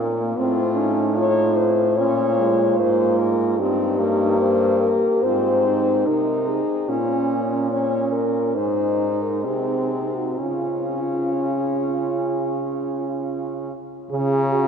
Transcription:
0.00 0.37 A#2 medium
0.00 0.39 A#3 medium
0.00 0.20 C#4 medium
0.37 2.00 A2 medium
0.37 0.78 C4 medium
0.37 1.12 F4 medium
0.77 1.17 C#4 medium
0.77 1.17 D#4 medium
1.15 1.70 D#4 medium
1.15 1.97 F4 medium
1.15 1.57 C#5 medium
1.56 1.98 C5 medium
1.96 2.81 A#2 medium
1.96 2.41 C#4 medium
1.96 3.62 F4 medium
1.96 2.78 C#5 medium
2.39 2.82 G#3 medium
2.79 3.61 G#2 medium
2.79 3.58 A#3 medium
2.79 3.18 C5 medium
3.18 3.60 A#4 medium
3.58 5.08 G2 medium
3.58 4.00 C4 medium
3.58 4.41 D#4 medium
3.58 5.24 G4 medium
3.99 5.26 A#3 medium
4.39 4.82 C5 medium
4.80 5.24 A#4 medium
5.22 6.06 G#2 medium
5.22 6.08 C4 medium
5.22 5.67 F4 medium
5.22 6.08 C5 medium
5.65 6.63 D#4 medium
6.06 6.62 C3 soft
6.06 6.91 D#4 medium
6.06 6.49 A#4 medium
6.47 6.91 G#4 medium
6.89 8.58 A#2 medium
6.89 7.71 C#4 medium
6.89 7.68 C#4 soft
6.89 7.45 F4 medium
7.71 8.26 C#4 soft
7.71 8.58 C#4 soft
7.71 8.10 C#5 medium
8.12 8.57 A#4 medium
8.55 9.47 G#2 soft
8.55 9.46 D#4 medium
8.55 10.40 D#4 soft
8.55 9.24 C5 medium
9.22 9.45 A#4 medium
9.44 10.40 C3 soft
9.44 10.39 C4 soft
9.44 10.16 G#4 medium
10.15 10.39 F#4 medium
10.38 13.73 C#3 soft
10.38 13.65 C#4 soft
10.38 13.16 F4 medium
10.38 13.73 F4 soft
14.11 14.68 C#3 medium
14.11 14.68 F4 medium
14.11 14.54 G#4 medium
14.53 14.68 F#4 medium

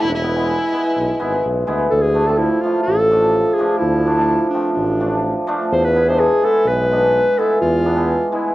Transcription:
0.00 0.59 E1 medium
0.00 0.14 E4 medium
0.00 0.11 E4 medium
0.09 0.16 D4 medium
0.15 1.43 E4 medium
0.15 1.39 E4 medium
0.23 0.30 B3 medium
0.23 0.31 E4 medium
0.36 0.71 G#3 medium
0.36 0.48 B3 medium
0.36 0.49 E4 medium
0.72 1.18 G#3 medium
0.72 0.84 B3 medium
0.72 0.85 E4 medium
0.97 1.11 B1 medium
1.19 1.42 G#1 medium
1.19 1.66 G#3 medium
1.19 1.32 B3 medium
1.19 1.32 E4 medium
1.45 1.66 B1 medium
1.67 1.89 D2 medium
1.67 1.96 G#3 medium
1.67 1.80 B3 medium
1.67 1.79 E4 medium
1.91 2.49 D2 loud
1.91 2.03 A4 loud
2.02 2.28 G#4 loud
2.14 2.21 A3 medium
2.14 2.21 D4 medium
2.27 2.62 F3 medium
2.27 2.40 A3 medium
2.27 2.40 C4 medium
2.27 2.40 A4 medium
2.38 2.63 E4 medium
2.62 3.09 F3 medium
2.62 2.76 A3 medium
2.62 2.76 E4 medium
2.62 2.82 F4 medium
2.83 3.55 A4 loud
2.88 3.44 A1 medium
3.10 3.57 F3 medium
3.10 3.22 A3 medium
3.10 3.23 D4 medium
3.53 3.80 G#4 medium
3.58 4.16 F3 medium
3.58 3.70 A3 medium
3.58 3.71 D4 medium
3.78 4.38 D2 medium
3.78 4.49 E4 medium
4.06 4.11 A3 medium
4.06 4.12 D4 medium
4.17 4.52 F3 medium
4.17 4.29 A3 medium
4.17 4.30 D4 medium
4.49 4.72 D4 medium
4.54 4.99 F3 medium
4.54 4.65 A3 medium
4.54 4.65 C4 medium
4.73 5.33 A1 medium
4.73 5.42 D4 medium
5.00 5.46 F3 medium
5.00 5.12 A3 medium
5.00 5.12 D4 medium
5.47 5.76 F3 medium
5.47 5.59 A3 medium
5.47 5.60 D4 medium
5.72 6.29 E2 loud
5.72 5.86 C5 loud
5.85 6.10 B4 loud
5.95 6.01 B3 medium
5.95 6.02 E4 medium
6.08 6.41 G#3 medium
6.08 6.20 B3 medium
6.08 6.20 D4 medium
6.08 6.21 C5 loud
6.20 6.46 G#4 loud
6.42 6.90 G#3 medium
6.42 6.55 B3 medium
6.42 6.55 E4 medium
6.42 6.69 A4 loud
6.65 7.23 B1 medium
6.65 7.40 B4 loud
6.91 7.37 G#3 medium
6.91 7.03 B3 medium
6.91 7.03 D4 medium
7.38 7.95 G#3 medium
7.38 7.50 B3 medium
7.38 7.50 E4 medium
7.38 7.61 A4 medium
7.61 8.19 E2 medium
7.61 8.29 F4 loud
7.85 7.91 B3 medium
7.85 7.91 D4 medium
7.96 8.31 G#3 medium
7.96 8.09 B3 medium
7.96 8.09 E4 medium
8.32 8.55 G#3 medium
8.32 8.44 B3 medium
8.32 8.45 E4 medium
8.32 8.55 E4 medium

